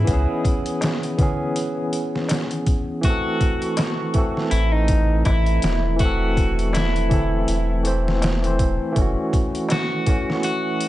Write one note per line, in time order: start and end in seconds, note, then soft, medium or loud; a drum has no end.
0.00 0.04 E3 medium
0.00 0.07 B3 medium
0.00 0.10 C#4 medium
0.00 0.44 E4 medium
0.00 0.13 G#4 medium
0.04 0.26 C#2 medium
0.04 1.13 E3 medium
0.04 1.14 B3 medium
0.04 kick loud
0.04 closed hi-hat medium
0.10 1.16 C#4 medium
0.10 1.18 G#4 medium
0.45 kick medium
0.45 closed hi-hat medium
0.66 closed hi-hat soft
0.81 snare loud
0.81 closed hi-hat medium
0.81 darbuka tek medium
1.03 closed hi-hat soft
1.18 1.49 E3 medium
1.18 1.50 B3 medium
1.18 1.50 C#4 medium
1.18 kick medium
1.18 closed hi-hat medium
1.18 darbuka dum medium
1.23 1.51 G#4 medium
1.56 closed hi-hat medium
1.93 closed hi-hat medium
2.15 snare soft
2.29 snare loud
2.29 closed hi-hat medium
2.29 darbuka tek medium
2.51 closed hi-hat soft
2.67 kick medium
2.67 closed hi-hat medium
3.01 4.09 E3 medium
3.01 4.11 A3 medium
3.01 4.57 F#4 loud
3.01 kick loud
3.01 closed hi-hat medium
3.07 4.12 C4 medium
3.07 4.14 A4 loud
3.41 kick medium
3.41 closed hi-hat medium
3.62 closed hi-hat soft
3.77 snare loud
3.77 closed hi-hat medium
3.77 darbuka tek medium
4.14 4.45 E3 medium
4.14 4.46 A3 medium
4.14 4.46 C4 medium
4.14 kick medium
4.14 closed hi-hat medium
4.18 4.47 A4 medium
4.37 snare soft
4.51 5.23 A1 medium
4.51 4.72 E4 medium
4.51 closed hi-hat medium
4.72 5.25 D#4 medium
4.88 kick loud
4.88 closed hi-hat medium
5.25 5.59 A1 medium
5.25 6.02 E4 medium
5.25 kick medium
5.25 closed hi-hat medium
5.25 darbuka tek medium
5.46 closed hi-hat soft
5.62 7.45 E1 medium
5.62 snare loud
5.62 closed hi-hat medium
5.96 7.05 E3 medium
5.96 7.07 A3 medium
5.96 kick loud
5.96 closed hi-hat medium
6.00 7.08 C4 medium
6.00 6.76 F#4 loud
6.05 7.10 A4 loud
6.37 kick medium
6.37 closed hi-hat medium
6.59 closed hi-hat soft
6.73 8.55 E4 medium
6.73 snare loud
6.73 closed hi-hat medium
6.73 darbuka tek medium
6.96 closed hi-hat soft
7.09 7.41 E3 medium
7.09 7.41 A3 medium
7.09 7.42 C4 medium
7.09 kick medium
7.09 closed hi-hat medium
7.09 darbuka dum medium
7.14 7.43 A4 medium
7.48 8.59 E1 loud
7.48 closed hi-hat medium
7.83 8.37 E3 medium
7.83 8.38 A3 medium
7.83 8.39 C4 medium
7.83 closed hi-hat medium
7.87 8.39 C5 medium
8.08 snare soft
8.22 snare loud
8.22 closed hi-hat medium
8.22 darbuka tek medium
8.42 8.91 E3 medium
8.42 8.92 A3 medium
8.42 8.93 C4 medium
8.42 closed hi-hat soft
8.47 8.94 C5 medium
8.59 8.78 E1 medium
8.59 kick medium
8.59 closed hi-hat medium
8.92 9.15 F#1 loud
8.92 10.01 E3 medium
8.92 10.03 A3 medium
8.92 kick loud
8.92 closed hi-hat medium
8.98 10.04 C#4 medium
8.98 10.06 F#4 medium
9.33 kick medium
9.33 closed hi-hat medium
9.55 closed hi-hat soft
9.69 10.43 F#4 medium
9.69 snare loud
9.69 closed hi-hat medium
9.69 darbuka tek medium
10.06 10.37 E3 medium
10.06 10.38 A3 medium
10.06 10.39 C#4 medium
10.06 kick medium
10.06 closed hi-hat medium
10.10 10.39 F#4 medium
10.30 snare soft
10.43 10.88 F#4 medium
10.43 closed hi-hat medium
10.81 closed hi-hat medium